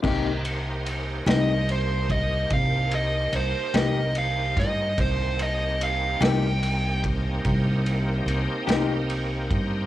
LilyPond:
<<
  \new Staff \with { instrumentName = "Lead electric guitar" } { \time 12/8 \key c \minor \tempo 4. = 49 r4. ees''8 c''8 ees''8 f''8 ees''8 c''8 ees''8 f''8 ees''8 | c''8 ees''8 f''8 g''4 r2. r8 | }
  \new Staff \with { instrumentName = "Tonewheel organ" } { \time 12/8 \key c \minor <bes ees' g' c''>1. | <bes c' ees' g'>1. | }
  \new Staff \with { instrumentName = "Clean electric guitar" } { \time 12/8 \key c \minor <c bes ees' g'>8 r4 <c bes ees' g'>8 r2 r8 <c bes ees' g'>8 r4 | r4. <c bes ees' g'>8 r2 r8 <c bes ees' g'>8 r4 | }
  \new Staff \with { instrumentName = "Upright bass" } { \clef bass \time 12/8 \key c \minor c,4. c,4. c,4 c,16 r16 c,4 g,8 | c,4. c,4. c,4 c,16 r16 c,4 g,8 | }
  \new DrumStaff \with { instrumentName = "Drums" } \drummode { \time 12/8 <cymc bd>8 cymr8 cymr8 <cymr sn>8 cymr8 <bd cymr>8 <bd cymr>8 cymr8 cymr8 <cymr sn>8 cymr8 <bd cymr sn>8 | <bd cymr>8 cymr8 cymr8 <cymr sn>8 cymr8 <bd cymr>8 <bd cymr>8 cymr8 cymr8 <cymr sn>8 cymr8 <bd cymr>8 | }
>>